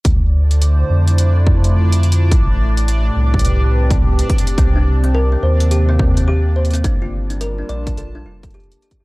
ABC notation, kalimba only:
X:1
M:4/4
L:1/16
Q:"Swing 16ths" 1/4=106
K:Dphr
V:1 name="Kalimba"
z16 | z16 | C D z C B C c z G C C C G z c C | D F z D B D d z A D F A G z G G |]